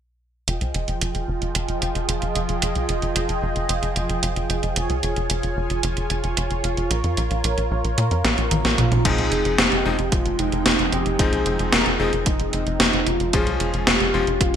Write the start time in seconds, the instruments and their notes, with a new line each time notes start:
0.48 analog synth bass F1, supersaw synth F3 F4 G#4 D#5 G5, closed hi-hat
0.61 analog synth bass C2, closed hi-hat
0.74 analog synth bass F1, closed hi-hat
0.88 analog synth bass F1, closed hi-hat
1.01 analog synth bass F1, closed hi-hat
1.15 analog synth bass F1, closed hi-hat
1.28 analog synth bass F1
1.42 analog synth bass F1, closed hi-hat
1.55 analog synth bass F1, closed hi-hat
1.69 analog synth bass F1, closed hi-hat
1.82 analog synth bass F1, closed hi-hat
1.95 analog synth bass F1, closed hi-hat
2.09 analog synth bass F1, closed hi-hat
2.22 analog synth bass F1, closed hi-hat
2.35 analog synth bass F1, closed hi-hat
2.49 analog synth bass F1, closed hi-hat
2.62 analog synth bass F1, closed hi-hat
2.75 analog synth bass C2, closed hi-hat
2.89 analog synth bass F1, closed hi-hat
3.02 analog synth bass F1, closed hi-hat
3.16 analog synth bass F1, closed hi-hat
3.29 analog synth bass F1, closed hi-hat
3.43 analog synth bass F1
3.56 analog synth bass F1, closed hi-hat
3.69 analog synth bass F1, closed hi-hat
3.83 analog synth bass F1, closed hi-hat
3.96 analog synth bass F1, closed hi-hat
4.10 analog synth bass F1, closed hi-hat
4.23 analog synth bass F1, closed hi-hat
4.36 analog synth bass F1, closed hi-hat
4.50 analog synth bass F1, closed hi-hat
4.63 analog synth bass F1, closed hi-hat
4.76 analog synth bass F1, supersaw synth F4 C#5 G#5, closed hi-hat
4.90 analog synth bass C2, closed hi-hat
5.03 analog synth bass F1, closed hi-hat
5.16 analog synth bass F1, closed hi-hat
5.30 analog synth bass F1, closed hi-hat
5.43 analog synth bass F1, closed hi-hat
5.57 analog synth bass F1
5.70 analog synth bass F1, closed hi-hat
5.83 analog synth bass F1, closed hi-hat
5.97 analog synth bass F1, closed hi-hat
6.10 analog synth bass F1, closed hi-hat
6.24 analog synth bass F1, closed hi-hat
6.37 analog synth bass F1, closed hi-hat
6.51 analog synth bass F1, closed hi-hat
6.64 analog synth bass F1, closed hi-hat
6.77 analog synth bass F1, closed hi-hat
6.91 analog synth bass A#1, supersaw synth A#4, closed hi-hat
7.04 analog synth bass F2, closed hi-hat
7.17 analog synth bass A#1, closed hi-hat
7.31 analog synth bass A#1, closed hi-hat
7.44 analog synth bass A#1, closed hi-hat
7.58 analog synth bass A#1, closed hi-hat
7.71 analog synth bass A#1
7.84 analog synth bass A#1, closed hi-hat
7.98 analog synth bass A#2, closed hi-hat
8.11 analog synth bass F2, closed hi-hat
8.25 analog synth bass A#1, snare, closed hi-hat
8.38 analog synth bass A#1, closed hi-hat
8.51 analog synth bass A#1, closed hi-hat, mid tom
8.65 analog synth bass A#1, snare, closed hi-hat
8.78 analog synth bass A#1, soft synth lead F4, closed hi-hat, mid tom
8.92 analog synth bass A#1, closed hi-hat, mid tom
9.05 analog synth bass F1, electric grand piano F3 G#3 C4 D#4, supersaw synth F3 G#3 C4 D#4 G5, soft synth lead G#4, kick, closed hi-hat, crash
9.18 analog synth bass C2, closed hi-hat
9.32 analog synth bass F1, closed hi-hat
9.45 analog synth bass F1, closed hi-hat
9.58 analog synth bass F1, soft synth lead G4, snare, closed hi-hat
9.72 analog synth bass F1, closed hi-hat
9.85 analog synth bass F1, electric grand piano F3 G#3 C4 D#4
9.99 analog synth bass F1, closed hi-hat
10.12 analog synth bass F1, soft synth lead F4, kick, closed hi-hat
10.26 analog synth bass F1, closed hi-hat
10.39 analog synth bass F1, soft synth lead D#4, closed hi-hat
10.52 analog synth bass F1, closed hi-hat
10.66 analog synth bass F1, snare, closed hi-hat
10.79 analog synth bass F1, closed hi-hat
10.92 analog synth bass F1, soft synth lead G4, closed hi-hat
11.06 analog synth bass F1, closed hi-hat
11.19 analog synth bass F1, electric grand piano F3 G#3 C4 D#4, soft synth lead G#4, kick, closed hi-hat
11.33 analog synth bass C2, closed hi-hat
11.46 analog synth bass F1, closed hi-hat
11.59 analog synth bass F1, closed hi-hat
11.73 analog synth bass F1, soft synth lead A#4, snare, closed hi-hat
11.86 analog synth bass F1, closed hi-hat
12.00 analog synth bass F1, electric grand piano F3 G#3 C4 D#4, soft synth lead G#4
12.13 analog synth bass F1, closed hi-hat
12.26 analog synth bass F1, soft synth lead D#4, kick, closed hi-hat
12.40 analog synth bass F1, closed hi-hat
12.53 analog synth bass F1, closed hi-hat
12.67 analog synth bass F1, closed hi-hat
12.80 analog synth bass F1, snare, closed hi-hat
12.93 analog synth bass F1, closed hi-hat
13.07 analog synth bass F1, soft synth lead F4, closed hi-hat
13.20 analog synth bass F1, closed hi-hat
13.33 analog synth bass F1, electric grand piano F3 G#3 C#4 F4, supersaw synth G#3 C#4 F4, soft synth lead G#4, kick, closed hi-hat
13.47 analog synth bass C2, closed hi-hat
13.60 analog synth bass F1, closed hi-hat
13.74 analog synth bass F1, closed hi-hat
13.87 analog synth bass F1, soft synth lead G4, snare, closed hi-hat
14.00 analog synth bass F1, closed hi-hat
14.14 analog synth bass F1, electric grand piano F3 G#3 C#4 F4
14.27 analog synth bass F1, closed hi-hat
14.41 analog synth bass F1, soft synth lead F4, kick, closed hi-hat